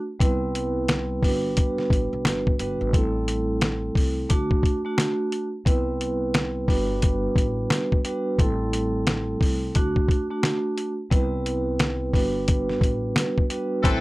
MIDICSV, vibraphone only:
0, 0, Header, 1, 2, 480
1, 0, Start_track
1, 0, Tempo, 681818
1, 145, Time_signature, 4, 2, 24, 8
1, 9860, End_track
2, 0, Start_track
2, 0, Title_t, "Vibraphone"
2, 0, Program_c, 0, 11
2, 138, Note_on_c, 0, 55, 94
2, 140, Note_on_c, 0, 59, 76
2, 142, Note_on_c, 0, 60, 77
2, 143, Note_on_c, 0, 64, 82
2, 146, Note_on_c, 0, 71, 96
2, 858, Note_off_c, 0, 55, 0
2, 859, Note_off_c, 0, 59, 0
2, 863, Note_off_c, 0, 60, 0
2, 864, Note_off_c, 0, 64, 0
2, 865, Note_off_c, 0, 71, 0
2, 866, Note_on_c, 0, 55, 85
2, 868, Note_on_c, 0, 59, 86
2, 870, Note_on_c, 0, 62, 86
2, 872, Note_on_c, 0, 66, 77
2, 874, Note_on_c, 0, 71, 97
2, 1768, Note_off_c, 0, 55, 0
2, 1768, Note_off_c, 0, 59, 0
2, 1770, Note_off_c, 0, 62, 0
2, 1771, Note_off_c, 0, 66, 0
2, 1772, Note_off_c, 0, 71, 0
2, 1824, Note_on_c, 0, 55, 72
2, 1826, Note_on_c, 0, 59, 66
2, 1828, Note_on_c, 0, 62, 68
2, 1830, Note_on_c, 0, 66, 68
2, 1831, Note_on_c, 0, 71, 85
2, 2050, Note_off_c, 0, 55, 0
2, 2051, Note_off_c, 0, 59, 0
2, 2052, Note_off_c, 0, 62, 0
2, 2053, Note_off_c, 0, 66, 0
2, 2053, Note_off_c, 0, 71, 0
2, 2066, Note_on_c, 0, 55, 80
2, 2067, Note_on_c, 0, 57, 81
2, 2069, Note_on_c, 0, 60, 83
2, 2071, Note_on_c, 0, 64, 78
2, 2073, Note_on_c, 0, 69, 90
2, 3013, Note_off_c, 0, 57, 0
2, 3022, Note_on_c, 0, 57, 94
2, 3025, Note_on_c, 0, 62, 84
2, 3026, Note_off_c, 0, 55, 0
2, 3027, Note_off_c, 0, 60, 0
2, 3028, Note_off_c, 0, 64, 0
2, 3029, Note_off_c, 0, 69, 0
2, 3029, Note_on_c, 0, 66, 112
2, 3377, Note_off_c, 0, 57, 0
2, 3378, Note_off_c, 0, 62, 0
2, 3381, Note_off_c, 0, 66, 0
2, 3414, Note_on_c, 0, 57, 93
2, 3418, Note_on_c, 0, 62, 80
2, 3421, Note_on_c, 0, 66, 104
2, 3846, Note_off_c, 0, 57, 0
2, 3848, Note_off_c, 0, 62, 0
2, 3850, Note_off_c, 0, 66, 0
2, 3979, Note_on_c, 0, 55, 90
2, 3980, Note_on_c, 0, 59, 81
2, 3982, Note_on_c, 0, 60, 77
2, 3984, Note_on_c, 0, 64, 81
2, 3986, Note_on_c, 0, 71, 96
2, 4697, Note_off_c, 0, 55, 0
2, 4699, Note_off_c, 0, 59, 0
2, 4704, Note_off_c, 0, 60, 0
2, 4704, Note_off_c, 0, 64, 0
2, 4704, Note_off_c, 0, 71, 0
2, 4705, Note_on_c, 0, 55, 86
2, 4707, Note_on_c, 0, 59, 91
2, 4709, Note_on_c, 0, 62, 82
2, 4711, Note_on_c, 0, 66, 79
2, 4712, Note_on_c, 0, 71, 95
2, 5607, Note_off_c, 0, 55, 0
2, 5608, Note_off_c, 0, 59, 0
2, 5609, Note_off_c, 0, 62, 0
2, 5610, Note_off_c, 0, 66, 0
2, 5611, Note_off_c, 0, 71, 0
2, 5664, Note_on_c, 0, 55, 74
2, 5666, Note_on_c, 0, 59, 67
2, 5668, Note_on_c, 0, 62, 70
2, 5670, Note_on_c, 0, 66, 70
2, 5672, Note_on_c, 0, 71, 87
2, 5890, Note_off_c, 0, 55, 0
2, 5891, Note_off_c, 0, 59, 0
2, 5892, Note_off_c, 0, 62, 0
2, 5893, Note_off_c, 0, 66, 0
2, 5894, Note_off_c, 0, 71, 0
2, 5904, Note_on_c, 0, 55, 81
2, 5906, Note_on_c, 0, 57, 80
2, 5908, Note_on_c, 0, 60, 84
2, 5910, Note_on_c, 0, 64, 80
2, 5912, Note_on_c, 0, 69, 89
2, 6853, Note_off_c, 0, 57, 0
2, 6862, Note_on_c, 0, 57, 94
2, 6865, Note_off_c, 0, 55, 0
2, 6865, Note_on_c, 0, 62, 85
2, 6867, Note_off_c, 0, 60, 0
2, 6868, Note_off_c, 0, 64, 0
2, 6868, Note_off_c, 0, 69, 0
2, 6869, Note_on_c, 0, 66, 107
2, 7217, Note_off_c, 0, 57, 0
2, 7219, Note_off_c, 0, 62, 0
2, 7221, Note_off_c, 0, 66, 0
2, 7253, Note_on_c, 0, 57, 96
2, 7257, Note_on_c, 0, 62, 82
2, 7261, Note_on_c, 0, 66, 102
2, 7686, Note_off_c, 0, 57, 0
2, 7688, Note_off_c, 0, 62, 0
2, 7690, Note_off_c, 0, 66, 0
2, 7817, Note_on_c, 0, 55, 90
2, 7819, Note_on_c, 0, 59, 77
2, 7821, Note_on_c, 0, 60, 78
2, 7822, Note_on_c, 0, 64, 83
2, 7824, Note_on_c, 0, 71, 98
2, 8537, Note_off_c, 0, 55, 0
2, 8539, Note_off_c, 0, 59, 0
2, 8543, Note_off_c, 0, 60, 0
2, 8544, Note_off_c, 0, 64, 0
2, 8545, Note_off_c, 0, 71, 0
2, 8545, Note_on_c, 0, 55, 83
2, 8547, Note_on_c, 0, 59, 89
2, 8550, Note_on_c, 0, 62, 85
2, 8551, Note_on_c, 0, 66, 76
2, 8553, Note_on_c, 0, 71, 94
2, 9447, Note_off_c, 0, 55, 0
2, 9448, Note_off_c, 0, 59, 0
2, 9449, Note_off_c, 0, 62, 0
2, 9450, Note_off_c, 0, 66, 0
2, 9451, Note_off_c, 0, 71, 0
2, 9505, Note_on_c, 0, 55, 74
2, 9506, Note_on_c, 0, 59, 68
2, 9508, Note_on_c, 0, 62, 68
2, 9510, Note_on_c, 0, 66, 67
2, 9511, Note_on_c, 0, 71, 81
2, 9730, Note_off_c, 0, 55, 0
2, 9731, Note_off_c, 0, 59, 0
2, 9732, Note_off_c, 0, 62, 0
2, 9733, Note_off_c, 0, 66, 0
2, 9734, Note_off_c, 0, 71, 0
2, 9745, Note_on_c, 0, 55, 81
2, 9747, Note_on_c, 0, 57, 80
2, 9749, Note_on_c, 0, 60, 85
2, 9751, Note_on_c, 0, 64, 85
2, 9753, Note_on_c, 0, 69, 98
2, 9860, Note_off_c, 0, 55, 0
2, 9860, Note_off_c, 0, 57, 0
2, 9860, Note_off_c, 0, 60, 0
2, 9860, Note_off_c, 0, 64, 0
2, 9860, Note_off_c, 0, 69, 0
2, 9860, End_track
0, 0, End_of_file